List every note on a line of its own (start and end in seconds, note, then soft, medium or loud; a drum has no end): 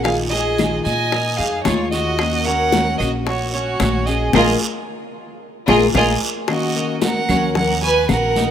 0.00 0.79 A#1 medium
0.00 0.16 F5 medium
0.04 0.31 D#3 medium
0.04 0.31 G#3 medium
0.04 0.32 D#4 medium
0.04 0.31 F4 medium
0.04 0.16 G#4 medium
0.04 high bongo medium
0.04 high conga soft
0.04 long guiro medium
0.30 0.58 D#4 soft
0.30 0.58 F4 soft
0.30 0.82 G#4 medium
0.30 0.59 G#4 medium
0.30 0.81 D#5 loud
0.30 high bongo soft
0.30 high conga soft
0.34 0.58 G#3 soft
0.58 0.85 D#3 medium
0.58 0.85 G#3 medium
0.58 0.85 D#4 medium
0.58 0.85 F4 medium
0.58 1.11 D#5 medium
0.58 high bongo medium
0.58 high conga medium
0.58 short guiro medium
0.58 claves medium
0.84 1.36 A#2 medium
0.84 1.12 D#4 soft
0.84 1.12 F4 soft
0.84 1.35 D#5 medium
0.84 1.39 G#5 loud
0.84 high conga soft
0.84 short guiro medium
0.88 1.12 G#3 soft
1.12 1.39 A#4 medium
1.12 muted steel-string acoustic guitar stroke medium
1.12 high bongo medium
1.12 high conga soft
1.12 long guiro medium
1.37 1.64 F2 medium
1.37 1.91 D#4 medium
1.37 1.65 G#4 medium
1.37 1.63 F5 medium
1.37 high bongo soft
1.37 high conga soft
1.64 2.94 D#2 medium
1.64 1.92 D#3 medium
1.64 1.92 G#3 medium
1.64 1.92 D#4 medium
1.64 1.90 F4 medium
1.64 1.90 C#5 medium
1.64 high bongo medium
1.64 low bongo medium
1.64 high conga medium
1.64 short guiro medium
1.64 claves medium
1.68 1.91 F4 medium
1.91 2.20 G#3 soft
1.91 2.19 D#4 soft
1.91 2.19 F4 soft
1.91 2.42 F#4 medium
1.91 2.45 F#4 medium
1.91 2.47 D#5 loud
1.91 high bongo soft
1.91 short guiro medium
2.19 2.45 D#3 medium
2.19 2.46 A#3 medium
2.19 2.46 C#4 medium
2.19 2.46 F#4 medium
2.19 high bongo medium
2.19 high conga soft
2.19 long guiro medium
2.19 claves medium
2.45 2.73 A#3 soft
2.45 2.99 C#4 medium
2.45 2.73 C#4 soft
2.45 2.72 F#4 medium
2.45 3.00 A#4 medium
2.45 2.98 F#5 loud
2.45 high conga soft
2.72 2.99 D#3 medium
2.72 2.99 A#3 medium
2.72 3.00 C#4 medium
2.72 2.99 F#4 medium
2.72 high bongo medium
2.72 high conga loud
2.72 short guiro medium
2.98 3.77 A#1 medium
2.98 3.27 C#4 soft
2.98 3.12 F#4 medium
2.98 3.52 F#4 medium
2.98 3.26 F#4 medium
2.98 3.11 D#5 medium
2.98 high conga soft
2.98 short guiro medium
2.98 claves medium
3.03 3.26 A#3 soft
3.26 3.52 F#4 medium
3.26 3.51 C#5 medium
3.26 muted steel-string acoustic guitar stroke medium
3.26 high bongo medium
3.26 high conga soft
3.26 long guiro medium
3.53 4.06 C#4 medium
3.53 4.03 F#4 medium
3.53 4.08 C#5 medium
3.53 high conga soft
3.80 4.31 A#1 medium
3.80 4.06 D#3 medium
3.80 4.06 A#3 medium
3.80 4.07 C#4 medium
3.80 4.06 F#4 medium
3.80 high bongo medium
3.80 low bongo medium
3.80 high conga medium
3.80 short guiro medium
3.80 claves medium
4.06 4.33 A#3 soft
4.06 4.34 C#4 soft
4.06 4.33 F#4 soft
4.06 4.33 G#4 medium
4.06 4.34 G#4 medium
4.06 4.34 D#5 medium
4.06 short guiro medium
4.33 4.54 A#1 medium
4.33 4.51 G#3 medium
4.33 4.52 A#3 medium
4.33 4.52 D#4 medium
4.33 4.52 F4 loud
4.33 4.52 F4 medium
4.33 4.51 G#4 medium
4.33 4.52 G#4 medium
4.33 4.52 A#4 medium
4.33 4.52 D#5 medium
4.33 low bongo loud
4.33 high conga medium
4.33 long guiro medium
4.33 claves loud
5.68 5.88 A#1 medium
5.68 5.86 G#3 loud
5.68 5.86 A#3 medium
5.68 5.86 D#4 medium
5.68 5.85 F4 loud
5.68 5.86 F4 medium
5.68 5.86 G#4 loud
5.68 5.86 G#4 medium
5.68 5.86 A#4 loud
5.68 5.86 D#5 medium
5.68 low bongo medium
5.68 high conga loud
5.68 long guiro medium
5.68 claves medium
5.94 6.15 A#1 medium
5.94 6.12 G#3 medium
5.94 6.12 A#3 medium
5.94 6.12 D#4 medium
5.94 6.12 F4 medium
5.94 6.13 F4 loud
5.94 6.13 G#4 loud
5.94 6.13 G#4 medium
5.94 6.12 A#4 medium
5.94 6.13 A#4 medium
5.94 6.13 D#5 medium
5.94 low bongo medium
5.94 high conga medium
5.94 long guiro medium
5.94 claves medium
6.48 7.01 D#3 medium
6.48 7.01 A#3 medium
6.48 7.02 C#4 medium
6.48 6.99 F#4 medium
6.48 7.02 F#4 medium
6.48 6.99 D#5 medium
6.48 high bongo medium
6.48 high conga soft
6.48 long guiro medium
6.48 claves medium
6.76 7.28 A#4 medium
6.76 high conga soft
7.02 7.28 D#3 medium
7.02 7.28 A#3 soft
7.02 7.29 C#4 medium
7.02 7.27 F#4 medium
7.02 7.53 A#4 medium
7.02 7.53 F#5 loud
7.02 high bongo medium
7.02 high conga loud
7.02 short guiro medium
7.28 8.05 D#2 medium
7.28 7.55 A#3 medium
7.28 7.55 C#4 medium
7.28 7.81 C#4 medium
7.28 7.55 F#4 medium
7.28 high bongo soft
7.28 high conga soft
7.28 low conga medium
7.28 short guiro medium
7.28 claves medium
7.55 7.82 A#4 medium
7.55 7.81 F#5 medium
7.55 muted steel-string acoustic guitar stroke medium
7.55 high bongo medium
7.55 high conga soft
7.55 low conga medium
7.55 long guiro medium
7.82 8.35 F#4 medium
7.82 8.08 B4 loud
7.82 8.08 G#5 loud
7.82 high bongo soft
7.82 high conga soft
8.09 8.51 A#1 loud
8.09 8.51 D#3 soft
8.09 8.51 A#3 soft
8.09 8.51 C#4 soft
8.09 8.51 F#4 medium
8.09 8.51 A#4 medium
8.09 8.51 F#5 medium
8.09 high bongo soft
8.09 low bongo medium
8.09 high conga soft
8.09 short guiro medium
8.09 claves medium
8.36 8.51 D#4 medium
8.36 high bongo soft
8.36 high conga medium
8.36 short guiro medium